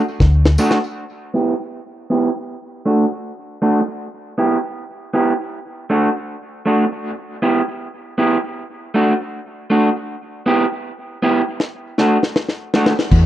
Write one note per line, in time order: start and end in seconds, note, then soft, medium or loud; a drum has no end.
0.20 0.56 D2 medium
0.20 kick loud
0.20 snare medium
0.45 snare medium
0.58 0.77 A3 medium
0.58 0.77 D4 medium
0.58 0.77 F#4 medium
0.58 tambourine medium
0.71 snare medium
1.34 1.52 B3 medium
1.34 1.53 E4 medium
1.34 1.53 G4 medium
2.10 2.28 B3 medium
2.10 2.29 E4 medium
2.10 2.29 G4 medium
2.86 3.04 A3 medium
2.86 3.05 D4 medium
2.86 3.05 F#4 medium
3.62 3.80 A3 medium
3.62 3.81 D4 medium
3.62 3.80 F#4 medium
3.81 muted clean electric guitar stroke soft
4.38 4.56 B3 medium
4.38 4.57 E4 medium
4.38 4.57 G4 medium
5.14 5.32 B3 medium
5.14 5.32 E4 medium
5.14 5.33 G4 medium
5.90 6.08 A3 medium
5.90 6.09 D4 medium
5.90 6.09 F#4 medium
6.66 6.84 A3 medium
6.66 6.85 D4 medium
6.66 6.84 F#4 medium
6.85 muted clean electric guitar stroke soft
7.42 7.60 B3 medium
7.42 7.61 E4 medium
7.42 7.61 G4 medium
8.18 8.36 B3 medium
8.18 8.37 E4 medium
8.18 8.37 G4 medium
8.94 9.12 A3 medium
8.94 9.13 D4 medium
8.94 9.13 F#4 medium
9.70 9.88 A3 medium
9.70 9.89 D4 medium
9.70 9.89 F#4 medium
10.46 10.64 B3 medium
10.46 10.65 E4 medium
10.46 10.65 G4 medium
11.22 11.41 B3 medium
11.22 11.41 E4 medium
11.22 11.41 G4 medium
11.60 snare medium
11.98 12.16 A3 medium
11.98 12.17 D4 medium
11.98 12.17 F#4 medium
11.98 snare medium
12.23 snare medium
12.36 snare medium
12.49 snare medium
12.74 12.92 A3 medium
12.74 12.93 D4 medium
12.74 12.92 F#4 medium
12.74 snare medium
12.86 snare medium
12.93 muted clean electric guitar stroke soft
12.99 snare medium
13.11 13.26 E2 loud
13.11 kick loud
13.11 crash medium